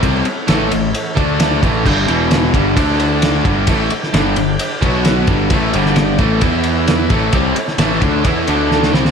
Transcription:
<<
  \new Staff \with { instrumentName = "Tonewheel organ" } { \time 4/4 \key a \mixolydian \tempo 4 = 131 <cis' e' a' cis''>2~ <cis' e' a' cis''>8 <a d' a' d''>4 r8 | r8 <b e' b' e''>4 r8 <d' a' d'' a''>4. <d' g' d'' g''>8~ | <d' g' d'' g''>2~ <d' g' d'' g''>8 <b fis' b' fis''>4 r8 | r8 <d' g' d'' g''>4 r8 <b e' b' e''>4. <cis' e' a' cis''>8~ |
<cis' e' a' cis''>2~ <cis' e' a' cis''>8 <a d' a' d''>4 r8 | }
  \new Staff \with { instrumentName = "Distorted electric guitar" } { \clef bass \time 4/4 \key a \mixolydian <c g c'>8 r8 <a, e a>8 <a, e>8 r8 <d a d'>4 <a, e a>8 | <g, d g>8 <e, b, e>4 <g, d g>8 <d a d'>4. <g, d g>8 | <a, e a>8 r8 <g, d g>8 <g, d>8 r8 <b, fis b>4 <g, d g>8 | <a, e a>8 <g, d g>4 <a, e a>8 <e b e'>4. <a, e a>8 |
<c g c'>8 r8 <a, e a>8 <d a d'>8 <e b e'>8 <d a d'>4 <c g c'>8 | }
  \new Staff \with { instrumentName = "Overdriven electric guitar" } { \clef bass \time 4/4 \key a \mixolydian <c g c'>8 r8 <a, e a>8 <a, e>8 r8 <d a d'>4 <a, e a>8 | <g, d g>8 <e, b, e>4 <g, d g>8 <d a d'>4. <g, d g>8 | <a, e a>8 r8 <g, d g>8 <g, d>8 r8 <b, fis b>4 <g, d g>8 | <a, e a>8 <g, d g>4 <a, e a>8 <e b e'>4. <a, e a>8 |
<c g c'>8 r8 <a, e a>8 <d a d'>8 <e b e'>8 <d a d'>4 <c g c'>8 | }
  \new Staff \with { instrumentName = "Picked electric bass" } { \clef bass \time 4/4 \key a \mixolydian c,8 r8 a,,8 a,,8 r8 d,4 a,,8 | g,,8 e,,4 g,,8 d,4. g,,8 | a,,8 r8 g,,8 g,,8 r8 b,,4 g,,8 | a,,8 g,,4 a,,8 e,4. a,,8 |
c,8 r8 a,,8 d,8 e,8 d,4 c,8 | }
  \new DrumStaff \with { instrumentName = "Drums" } \drummode { \time 4/4 <bd cymr>8 cymr8 <cymr sn>8 cymr8 cymr8 <bd cymr>8 <cymr sn>8 <bd cymr>8 | <cymc bd>8 cymr8 <cymr sn>8 <bd cymr>8 <bd cymr>8 cymr8 <cymr sn>8 <bd cymr>8 | <bd cymr>8 cymr16 sn16 <cymr sn>8 cymr8 cymr8 <bd cymr>8 <cymr sn>8 <bd cymr>8 | <bd cymr>8 cymr16 sn16 <cymr sn>8 <bd cymr>8 <bd cymr>8 cymr8 <cymr sn>8 <bd cymr>8 |
<bd cymr>8 cymr16 sn16 <cymr sn>8 <bd cymr>8 <bd cymr>8 cymr8 sn16 sn16 sn16 sn16 | }
>>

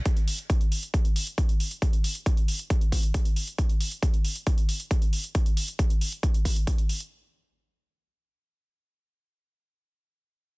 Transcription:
\new DrumStaff \with { instrumentName = "Drums" } \drummode { \time 4/4 \tempo 4 = 136 <hh bd>16 hh16 hho16 hh16 <hh bd>16 hh16 hho16 hh16 <hh bd>16 hh16 hho16 hh16 <hh bd>16 hh16 hho16 hh16 | <hh bd>16 hh16 hho16 hh16 <hh bd>16 hh16 hho16 hh16 <hh bd>16 hh16 <hho bd>16 hh16 <hh bd>16 hh16 hho16 hh16 | <hh bd>16 hh16 hho16 hh16 <hh bd>16 hh16 hho16 hh16 <hh bd>16 hh16 hho16 hh16 <hh bd>16 hh16 hho16 hh16 | <hh bd>16 hh16 hho16 hh16 <hh bd>16 hh16 hho16 hh16 <hh bd>16 hh16 <hho bd>16 hh16 <hh bd>16 hh16 hho16 hh16 |
r4 r4 r4 r4 | r4 r4 r4 r4 | }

